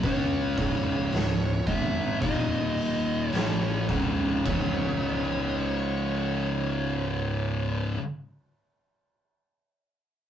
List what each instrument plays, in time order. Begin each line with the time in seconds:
0.03 picked electric bass C#2, distorted electric guitar C#3 G#3 C#4, lead electric guitar C#5, kick, open hi-hat
0.58 picked electric bass C#1, distorted electric guitar C#2 G#2 C#3, kick, open hi-hat
1.12 picked electric bass C#1, distorted electric guitar C#2 G#2, snare, open hi-hat
1.67 picked electric bass G#1, distorted electric guitar G#2 D#3 G#3, lead electric guitar E5, kick, open hi-hat
2.22 picked electric bass D#1, distorted electric guitar D#2 A#2 D#3, lead electric guitar D#5, kick, open hi-hat
2.77 open hi-hat
3.31 picked electric bass A1, distorted electric guitar A2 E3 A3, lead electric guitar C#5, open hi-hat
3.35 snare
3.89 picked electric bass C#1, distorted electric guitar C#2 G#2 C#3, kick, open hi-hat
4.45 picked electric bass C#1, distorted electric guitar C#2 G#2 C#3, lead electric guitar C#5, kick, floor tom, crash